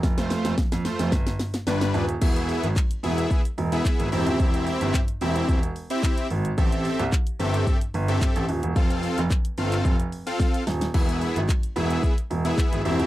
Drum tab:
CC |----------------|x---------------|----------------|----------------|
HH |-xox-xox-xox-xox|-xox-xox-xox-xox|-xox-xox-xox-xox|-xox-xox-xox-xox|
SH |xxxxxxxxxxxxxxxx|xxxxxxxxxxxxxxxx|xxxxxxxxxxxxxxxx|xxxxxxxxxxxxxxxx|
CP |----------------|----x-------x---|----x-------x---|----x-------x---|
SD |oooooooooooooo--|----------------|----------------|----------------|
BD |o---o---o-------|o---o---o---o---|o---o---o---o---|o---o---o---o---|

CC |----------------|x---------------|
HH |-xox-xox-xox-xox|-xox-xox-xox-xox|
SH |xxxxxxxxxxxxxxxx|-xxxxxxxxxxxxxxx|
CP |----x--x--------|----x-------x---|
SD |------------o-oo|----------------|
BD |o---o---o---o---|o---o---o---o---|